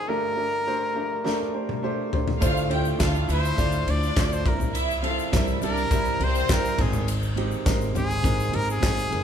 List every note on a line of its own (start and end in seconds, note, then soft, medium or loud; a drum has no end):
0.00 0.11 A#3 loud
0.00 0.11 D#4 medium
0.00 0.10 G#4 loud
0.00 0.11 G#4 loud
0.00 0.09 A#4 medium
0.00 0.11 C5 loud
0.08 0.92 G2 medium
0.08 0.92 D3 medium
0.08 0.29 A3 loud
0.08 0.30 D4 medium
0.08 0.30 G4 medium
0.08 1.83 A#4 loud
0.08 0.30 A#4 loud
0.36 0.58 A3 medium
0.36 0.58 D4 medium
0.36 0.58 G4 medium
0.36 0.59 A#4 medium
0.66 0.88 A3 medium
0.66 0.88 D4 medium
0.66 0.88 G4 medium
0.66 0.88 C5 medium
0.95 1.16 A3 medium
0.95 1.17 D4 medium
0.95 1.17 G4 medium
0.95 1.17 A#4 medium
1.24 1.46 A3 loud
1.24 1.46 D4 loud
1.24 1.46 G4 loud
1.24 1.46 A#4 loud
1.24 snare soft
1.54 1.75 A3 medium
1.54 1.75 D4 medium
1.54 1.75 G4 medium
1.54 1.76 C5 medium
1.69 high tom medium
1.82 2.04 A3 medium
1.82 2.04 D4 medium
1.82 2.05 G4 medium
1.82 2.05 C5 loud
2.12 2.33 A3 medium
2.12 2.33 D4 medium
2.12 2.33 G4 medium
2.12 2.34 C5 medium
2.12 floor tom medium
2.28 floor tom medium
2.40 2.90 D2 loud
2.40 3.25 A2 medium
2.40 2.62 A3 loud
2.40 2.62 D4 loud
2.40 2.62 F4 loud
2.40 2.65 F4 loud
2.40 2.63 C5 loud
2.40 2.65 F5 loud
2.40 kick loud
2.40 ride medium
2.40 shaker medium
2.57 shaker soft
2.69 2.91 A3 medium
2.69 2.91 D4 medium
2.69 2.91 F4 medium
2.69 2.94 G4 medium
2.69 2.92 C5 loud
2.69 2.95 G5 medium
2.69 ride medium
2.85 shaker medium
2.99 3.24 D2 medium
2.99 3.20 A3 loud
2.99 3.21 D4 medium
2.99 3.21 F4 medium
2.99 3.23 F4 loud
2.99 3.21 A4 loud
2.99 3.23 F5 loud
2.99 kick loud
2.99 snare loud
2.99 clap medium
2.99 ride medium
2.99 shaker medium
3.15 shaker soft
3.28 3.53 D2 loud
3.28 3.50 A3 medium
3.28 3.50 D4 medium
3.28 3.52 E4 loud
3.28 3.50 F4 medium
3.28 3.50 A4 medium
3.28 3.92 C5 loud
3.28 3.52 E5 loud
3.28 ride medium
3.28 shaker soft
3.45 shaker medium
3.57 3.82 D2 medium
3.57 3.78 A3 loud
3.57 3.79 D4 medium
3.57 3.79 F4 medium
3.57 3.82 F4 medium
3.57 3.79 D5 loud
3.57 3.82 F5 medium
3.57 kick medium
3.57 snare soft
3.57 ride medium
3.57 shaker medium
3.72 shaker medium
3.86 4.11 D2 medium
3.86 4.08 A3 medium
3.86 4.08 D4 medium
3.86 4.43 D4 medium
3.86 4.08 F4 medium
3.86 4.08 C5 medium
3.86 4.43 D5 loud
3.86 ride medium
3.90 4.21 D5 loud
4.03 shaker medium
4.16 4.40 D2 medium
4.16 4.37 A3 medium
4.16 4.37 D4 medium
4.16 4.38 F4 medium
4.16 4.26 C5 loud
4.16 4.38 D5 medium
4.16 kick loud
4.16 snare loud
4.16 clap medium
4.16 ride medium
4.16 shaker medium
4.25 4.35 D5 medium
4.33 4.49 C5 loud
4.33 shaker medium
4.44 5.17 C2 loud
4.44 5.29 G2 medium
4.44 4.92 G3 medium
4.44 4.92 C4 medium
4.44 4.92 E4 medium
4.44 4.92 A#4 medium
4.44 4.76 A#4 medium
4.44 kick loud
4.44 ride medium
4.60 floor tom medium
4.60 shaker soft
4.75 4.99 E4 loud
4.75 4.98 E5 loud
4.75 ride medium
4.75 shaker medium
4.91 shaker soft
5.03 5.24 G3 medium
5.03 5.24 C4 medium
5.03 5.24 E4 medium
5.03 5.27 F4 medium
5.03 5.25 A4 loud
5.03 5.28 F5 loud
5.03 ride medium
5.19 shaker soft
5.32 5.57 C2 loud
5.32 5.54 G3 loud
5.32 5.54 C4 medium
5.32 5.56 E4 medium
5.32 5.54 E4 medium
5.32 5.54 A#4 loud
5.32 5.56 E5 loud
5.32 kick loud
5.32 snare medium
5.32 clap medium
5.32 ride medium
5.32 shaker medium
5.47 shaker soft
5.61 5.86 C2 loud
5.61 5.83 G3 medium
5.61 5.83 C4 medium
5.61 5.86 D4 loud
5.61 5.83 E4 medium
5.61 5.83 G4 medium
5.61 6.25 A#4 loud
5.61 5.86 D5 loud
5.61 ride medium
5.61 shaker medium
5.77 shaker soft
5.90 6.15 C2 loud
5.90 6.12 G3 medium
5.90 6.12 C4 medium
5.90 6.12 E4 medium
5.90 6.15 E4 medium
5.90 6.12 A#4 loud
5.90 6.15 E5 loud
5.90 kick loud
5.90 snare soft
5.90 ride medium
5.90 shaker medium
6.05 shaker medium
6.19 6.44 C2 loud
6.19 6.41 G3 medium
6.19 6.41 C4 medium
6.19 6.75 C4 loud
6.19 6.41 E4 medium
6.19 6.42 A#4 medium
6.19 6.75 C5 loud
6.19 6.54 C5 loud
6.19 ride medium
6.35 shaker medium
6.48 6.73 C2 medium
6.48 6.70 G3 medium
6.48 6.70 C4 medium
6.48 6.70 E4 medium
6.48 6.71 A#4 loud
6.48 kick loud
6.48 snare loud
6.48 clap loud
6.48 ride medium
6.48 shaker medium
6.53 6.83 A#4 loud
6.65 shaker medium
6.78 7.50 G#1 loud
6.78 7.62 G#2 medium
6.78 7.62 D#3 medium
6.78 7.25 G#3 medium
6.78 7.25 C4 medium
6.78 7.25 D#4 medium
6.78 7.09 G#4 medium
6.78 7.25 A#4 medium
6.78 kick loud
6.78 crash medium
6.93 floor tom medium
6.93 ride soft
6.93 shaker medium
7.08 ride medium
7.08 shaker medium
7.23 shaker medium
7.36 7.57 G#3 medium
7.36 7.58 C4 medium
7.36 7.58 D#4 medium
7.36 7.58 G4 loud
7.36 ride medium
7.51 shaker medium
7.66 7.90 G#1 loud
7.66 7.87 G#3 loud
7.66 7.87 C4 medium
7.66 7.87 D#4 medium
7.66 7.87 A#4 loud
7.66 kick loud
7.66 snare loud
7.66 clap medium
7.66 ride medium
7.66 shaker medium
7.81 shaker medium
7.94 8.19 G#1 loud
7.94 8.16 G#3 medium
7.94 8.16 C4 medium
7.94 8.16 D#4 medium
7.94 8.57 G#4 loud
7.94 8.16 C5 medium
7.94 floor tom medium
7.94 ride medium
7.94 shaker medium
8.11 shaker soft
8.23 8.48 G#1 loud
8.23 8.45 G#3 loud
8.23 8.45 C4 medium
8.23 8.45 D#4 medium
8.23 8.45 A#4 loud
8.23 kick loud
8.23 snare soft
8.23 ride medium
8.23 shaker medium
8.40 shaker medium
8.52 8.77 G#1 loud
8.52 8.73 G#3 medium
8.52 8.74 C4 medium
8.52 8.74 D#4 medium
8.52 8.74 G4 medium
8.52 8.69 A#4 loud
8.52 ride medium
8.69 9.24 G#4 loud
8.69 shaker medium
8.81 9.06 G#1 medium
8.81 9.02 G#3 medium
8.81 9.03 C4 medium
8.81 9.03 D#4 medium
8.81 9.03 G#4 loud
8.81 kick loud
8.81 snare loud
8.81 clap loud
8.81 ride medium
8.81 shaker medium
8.97 ride soft
8.97 shaker soft
9.10 9.24 F#1 medium
9.10 9.24 G#3 medium
9.10 9.24 C4 medium
9.10 9.24 D#4 medium
9.10 9.24 A#4 medium
9.10 ride medium